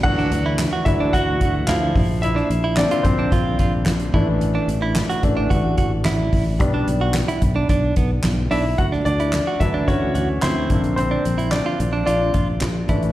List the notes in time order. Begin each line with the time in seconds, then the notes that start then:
0.03 D2 E3 F#3 D4 F#4 F#5, kick, crash
0.18 D4, snare
0.31 D2, closed hi-hat
0.46 E4
0.59 snare, clap, closed hi-hat
0.73 F#4
0.85 D2 E3 F#3 D4 E4 E5, kick, closed hi-hat
1.00 D4
1.13 D2 F#4 F#5, kick, closed hi-hat
1.41 D2 F#4, kick, closed hi-hat
1.67 D2 F3 E4 F5, snare, clap, closed hi-hat
1.95 A#1, kick, open hi-hat
2.22 E4 E5, closed hi-hat
2.36 D4, snare
2.50 A#1, closed hi-hat
2.64 E4
2.77 D3 A#3 C4 D4 D5, snare, clap, closed hi-hat
2.91 F4, closed hi-hat
3.03 A#1 C4 C5, kick, closed hi-hat
3.19 D4
3.32 A#1 F4, kick, closed hi-hat
3.59 A#1 F4, kick, closed hi-hat
3.86 A#1, snare, clap, closed hi-hat
4.00 closed hi-hat
4.14 A1 E3 A3 D4 E4, kick, crash
4.41 closed hi-hat
4.55 D4
4.68 A1, closed hi-hat
4.82 E4
4.96 snare, clap, closed hi-hat
5.10 F#4, closed hi-hat
5.23 A1 E3 A3 D4, kick, closed hi-hat
5.37 D4
5.50 A1 F#4, kick, closed hi-hat
5.78 A1 F#4, kick, closed hi-hat
6.05 A1 E4, snare, clap, closed hi-hat
6.33 A1, kick, open hi-hat
6.59 B1 G3 B3 D4, kick, closed hi-hat
6.74 D4
6.88 B1, closed hi-hat
7.01 F#4
7.14 snare, clap, closed hi-hat
7.28 E4, closed hi-hat
7.42 B1, kick, closed hi-hat
7.56 D4
7.69 B1 D4, kick, closed hi-hat
7.96 B1 B3, kick, closed hi-hat
8.24 B1, snare, clap, closed hi-hat
8.51 B1 D4 E4 E5, open hi-hat
8.78 D2 F#4 F#5, kick, closed hi-hat
8.92 D4, snare
9.05 D2 D4 D5, closed hi-hat
9.20 E4, closed hi-hat
9.33 snare, clap, closed hi-hat
9.47 F#4
9.60 D2 E3 F#3 D4 E4 E5, kick, closed hi-hat
9.74 D4
9.88 D2 C#4 F#4 C#5, kick, closed hi-hat
10.15 D2 F#4, closed hi-hat
10.42 D2 C4 E4 C5, snare, clap, closed hi-hat
10.70 A#1 D3 A#3 C4, kick, closed hi-hat
10.84 closed hi-hat
10.96 C4 C5, closed hi-hat
11.11 D4
11.25 A#1, closed hi-hat
11.38 E4, closed hi-hat
11.51 D4 D5, snare, clap, closed hi-hat
11.66 F4
11.80 A#1, closed hi-hat
11.93 D4
12.06 A#1 D4 F4 D5, closed hi-hat
12.34 A#1 F4, kick, closed hi-hat
12.61 A#1, snare, clap, closed hi-hat
12.89 A1 E3 A3 D4 E4, kick, closed hi-hat
13.03 closed hi-hat